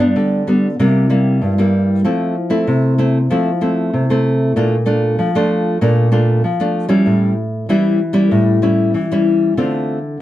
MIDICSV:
0, 0, Header, 1, 2, 480
1, 0, Start_track
1, 0, Tempo, 627615
1, 1566, Time_signature, 4, 2, 24, 8
1, 7813, End_track
2, 0, Start_track
2, 0, Title_t, "Nylon-string guitar"
2, 0, Program_c, 0, 24
2, 0, Note_on_c, 0, 43, 66
2, 0, Note_on_c, 0, 55, 54
2, 0, Note_on_c, 0, 59, 55
2, 0, Note_on_c, 0, 62, 65
2, 103, Note_off_c, 0, 43, 0
2, 122, Note_on_c, 0, 50, 73
2, 319, Note_off_c, 0, 55, 0
2, 320, Note_off_c, 0, 59, 0
2, 321, Note_off_c, 0, 62, 0
2, 362, Note_on_c, 0, 55, 46
2, 366, Note_on_c, 0, 59, 54
2, 371, Note_on_c, 0, 62, 52
2, 505, Note_off_c, 0, 55, 0
2, 507, Note_off_c, 0, 59, 0
2, 508, Note_off_c, 0, 62, 0
2, 580, Note_off_c, 0, 50, 0
2, 608, Note_on_c, 0, 48, 72
2, 609, Note_on_c, 0, 55, 55
2, 610, Note_on_c, 0, 58, 56
2, 615, Note_on_c, 0, 64, 65
2, 808, Note_off_c, 0, 55, 0
2, 810, Note_off_c, 0, 58, 0
2, 811, Note_off_c, 0, 64, 0
2, 838, Note_on_c, 0, 55, 50
2, 841, Note_on_c, 0, 58, 51
2, 844, Note_on_c, 0, 64, 58
2, 1063, Note_off_c, 0, 48, 0
2, 1083, Note_on_c, 0, 43, 67
2, 1164, Note_off_c, 0, 55, 0
2, 1165, Note_off_c, 0, 58, 0
2, 1166, Note_off_c, 0, 64, 0
2, 1211, Note_on_c, 0, 55, 61
2, 1214, Note_on_c, 0, 58, 57
2, 1219, Note_on_c, 0, 64, 59
2, 1530, Note_off_c, 0, 55, 0
2, 1532, Note_off_c, 0, 58, 0
2, 1534, Note_off_c, 0, 64, 0
2, 1540, Note_off_c, 0, 43, 0
2, 1563, Note_on_c, 0, 53, 62
2, 1564, Note_on_c, 0, 57, 52
2, 1567, Note_on_c, 0, 60, 56
2, 1572, Note_on_c, 0, 64, 65
2, 1790, Note_off_c, 0, 57, 0
2, 1792, Note_off_c, 0, 60, 0
2, 1794, Note_off_c, 0, 64, 0
2, 1911, Note_on_c, 0, 57, 54
2, 1915, Note_on_c, 0, 60, 57
2, 1916, Note_on_c, 0, 64, 63
2, 2021, Note_off_c, 0, 53, 0
2, 2045, Note_on_c, 0, 48, 69
2, 2240, Note_off_c, 0, 57, 0
2, 2242, Note_off_c, 0, 60, 0
2, 2242, Note_off_c, 0, 64, 0
2, 2282, Note_on_c, 0, 57, 54
2, 2287, Note_on_c, 0, 60, 46
2, 2289, Note_on_c, 0, 64, 59
2, 2425, Note_off_c, 0, 57, 0
2, 2427, Note_off_c, 0, 60, 0
2, 2429, Note_off_c, 0, 64, 0
2, 2502, Note_off_c, 0, 48, 0
2, 2526, Note_on_c, 0, 53, 67
2, 2529, Note_on_c, 0, 57, 58
2, 2529, Note_on_c, 0, 60, 58
2, 2535, Note_on_c, 0, 64, 56
2, 2667, Note_off_c, 0, 57, 0
2, 2669, Note_off_c, 0, 60, 0
2, 2671, Note_off_c, 0, 64, 0
2, 2762, Note_on_c, 0, 57, 54
2, 2766, Note_on_c, 0, 60, 49
2, 2769, Note_on_c, 0, 64, 58
2, 2982, Note_off_c, 0, 53, 0
2, 3009, Note_on_c, 0, 48, 66
2, 3086, Note_off_c, 0, 57, 0
2, 3087, Note_off_c, 0, 60, 0
2, 3089, Note_off_c, 0, 64, 0
2, 3137, Note_on_c, 0, 57, 52
2, 3138, Note_on_c, 0, 60, 60
2, 3144, Note_on_c, 0, 64, 61
2, 3453, Note_off_c, 0, 57, 0
2, 3454, Note_off_c, 0, 60, 0
2, 3455, Note_off_c, 0, 64, 0
2, 3463, Note_off_c, 0, 48, 0
2, 3487, Note_on_c, 0, 46, 67
2, 3490, Note_on_c, 0, 57, 53
2, 3493, Note_on_c, 0, 62, 55
2, 3495, Note_on_c, 0, 65, 64
2, 3629, Note_off_c, 0, 57, 0
2, 3629, Note_off_c, 0, 62, 0
2, 3632, Note_off_c, 0, 65, 0
2, 3716, Note_on_c, 0, 57, 51
2, 3720, Note_on_c, 0, 62, 50
2, 3724, Note_on_c, 0, 65, 60
2, 3943, Note_off_c, 0, 46, 0
2, 3966, Note_on_c, 0, 53, 74
2, 4042, Note_off_c, 0, 57, 0
2, 4044, Note_off_c, 0, 62, 0
2, 4046, Note_off_c, 0, 65, 0
2, 4094, Note_on_c, 0, 57, 62
2, 4099, Note_on_c, 0, 62, 64
2, 4100, Note_on_c, 0, 65, 62
2, 4412, Note_off_c, 0, 57, 0
2, 4413, Note_off_c, 0, 65, 0
2, 4414, Note_off_c, 0, 62, 0
2, 4422, Note_off_c, 0, 53, 0
2, 4445, Note_on_c, 0, 46, 78
2, 4448, Note_on_c, 0, 57, 56
2, 4451, Note_on_c, 0, 65, 67
2, 4453, Note_on_c, 0, 62, 58
2, 4648, Note_off_c, 0, 57, 0
2, 4648, Note_off_c, 0, 62, 0
2, 4650, Note_off_c, 0, 65, 0
2, 4678, Note_on_c, 0, 57, 55
2, 4681, Note_on_c, 0, 62, 61
2, 4684, Note_on_c, 0, 65, 61
2, 4902, Note_off_c, 0, 46, 0
2, 4906, Note_off_c, 0, 57, 0
2, 4908, Note_off_c, 0, 62, 0
2, 4909, Note_off_c, 0, 65, 0
2, 4925, Note_on_c, 0, 53, 70
2, 5047, Note_on_c, 0, 57, 59
2, 5052, Note_on_c, 0, 62, 59
2, 5055, Note_on_c, 0, 65, 63
2, 5247, Note_off_c, 0, 57, 0
2, 5250, Note_off_c, 0, 62, 0
2, 5251, Note_off_c, 0, 65, 0
2, 5266, Note_on_c, 0, 55, 67
2, 5270, Note_on_c, 0, 61, 66
2, 5271, Note_on_c, 0, 64, 65
2, 5381, Note_off_c, 0, 53, 0
2, 5399, Note_on_c, 0, 45, 73
2, 5596, Note_off_c, 0, 55, 0
2, 5598, Note_off_c, 0, 61, 0
2, 5599, Note_off_c, 0, 64, 0
2, 5857, Note_off_c, 0, 45, 0
2, 5881, Note_on_c, 0, 52, 76
2, 5885, Note_on_c, 0, 55, 64
2, 5886, Note_on_c, 0, 61, 66
2, 5890, Note_on_c, 0, 64, 67
2, 6108, Note_off_c, 0, 55, 0
2, 6110, Note_off_c, 0, 61, 0
2, 6111, Note_off_c, 0, 64, 0
2, 6219, Note_on_c, 0, 55, 66
2, 6223, Note_on_c, 0, 61, 59
2, 6224, Note_on_c, 0, 64, 74
2, 6338, Note_off_c, 0, 52, 0
2, 6358, Note_on_c, 0, 45, 75
2, 6552, Note_off_c, 0, 55, 0
2, 6553, Note_off_c, 0, 61, 0
2, 6554, Note_off_c, 0, 64, 0
2, 6593, Note_on_c, 0, 55, 55
2, 6599, Note_on_c, 0, 61, 53
2, 6600, Note_on_c, 0, 64, 60
2, 6816, Note_off_c, 0, 45, 0
2, 6840, Note_on_c, 0, 52, 72
2, 6919, Note_off_c, 0, 55, 0
2, 6920, Note_off_c, 0, 61, 0
2, 6922, Note_off_c, 0, 64, 0
2, 6971, Note_on_c, 0, 55, 61
2, 6976, Note_on_c, 0, 61, 54
2, 6978, Note_on_c, 0, 64, 67
2, 7288, Note_off_c, 0, 55, 0
2, 7290, Note_off_c, 0, 61, 0
2, 7290, Note_off_c, 0, 64, 0
2, 7296, Note_off_c, 0, 52, 0
2, 7322, Note_on_c, 0, 50, 70
2, 7322, Note_on_c, 0, 57, 56
2, 7324, Note_on_c, 0, 60, 57
2, 7328, Note_on_c, 0, 65, 63
2, 7630, Note_off_c, 0, 57, 0
2, 7631, Note_off_c, 0, 60, 0
2, 7633, Note_off_c, 0, 65, 0
2, 7777, Note_off_c, 0, 50, 0
2, 7813, End_track
0, 0, End_of_file